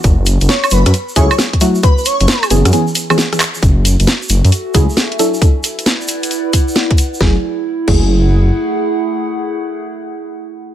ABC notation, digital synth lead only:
X:1
M:4/4
L:1/16
Q:"Swing 16ths" 1/4=134
K:F#m
V:1 name="Digital synth lead"
z4 c c B B z2 c c z4 | B B c3 z8 z3 | z16 | z16 |
z16 | z16 |]